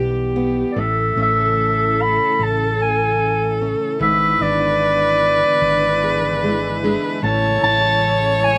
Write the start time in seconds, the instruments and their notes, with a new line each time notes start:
Already playing: fingered electric bass B1, steel-string acoustic guitar E2 E3 G3 B3 G4, viola G4
0.36 steel-string acoustic guitar B3
0.72 clarinet D5
0.76 fingered electric bass A1, steel-string acoustic guitar A2, analog synth pad C#3 E3 A3 E4, viola A4, clarinet E5
1.16 fingered electric bass A1, steel-string acoustic guitar C#4
1.22 clarinet E5
2.02 clarinet B5
2.39 fingered electric bass A1
2.43 clarinet A5
2.82 clarinet G#5
3.61 steel-string acoustic guitar C#4
4.00 fingered electric bass G#1, steel-string acoustic guitar G#2, analog synth pad D3 B3, viola B4, clarinet E5
4.41 fingered electric bass G#1, steel-string acoustic guitar D4, clarinet D5
5.61 fingered electric bass G#1
6.04 steel-string acoustic guitar G#4
6.44 steel-string acoustic guitar G#3
6.84 steel-string acoustic guitar G#3 D4 G#4
7.23 fingered electric bass A1, steel-string acoustic guitar A2, analog synth pad C#3 G#3, viola C#5, clarinet A5
7.63 fingered electric bass A1, steel-string acoustic guitar E4, clarinet A5
8.44 clarinet G#5